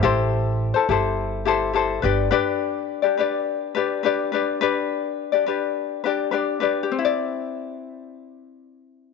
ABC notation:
X:1
M:4/4
L:1/16
Q:1/4=105
K:C
V:1 name="Ukulele"
[EGAc]4- [EGAc] [EAc] [EGAc]4 [EGAc]2 [EGAc]2 [DGBd]2 | [DGBd]4- [DGBd] [DGd] [DGBd]4 [DGBd]2 [DGBd]2 [DGBd]2 | [DGBd]4- [DGBd] [DGd] [DGBd]4 [DGBd]2 [DGBd]2 [DGBd]2 | [CEGd]16 |]
V:2 name="Upright bass" clef=bass
A,,,4- A,,, z G,,,8 G,,,2 | z16 | z16 | z16 |]